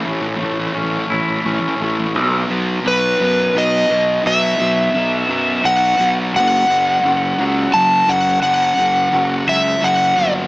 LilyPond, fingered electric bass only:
\new Staff \with { instrumentName = "Fingered electric bass" } { \clef bass \time 3/4 \key b \dorian \tempo 4 = 86 a,,8 a,,8 a,,8 a,,8 a,,8 a,,8 | b,,8 b,,8 b,,8 fis,8 b,,8 b,,8 | b,,8 b,,8 b,,8 fis,8 b,,8 b,,8 | fis,,8 fis,,8 fis,,8 cis,8 fis,,8 fis,,8 |
fis,,8 fis,,8 fis,,8 cis,8 fis,,8 g,,8 | }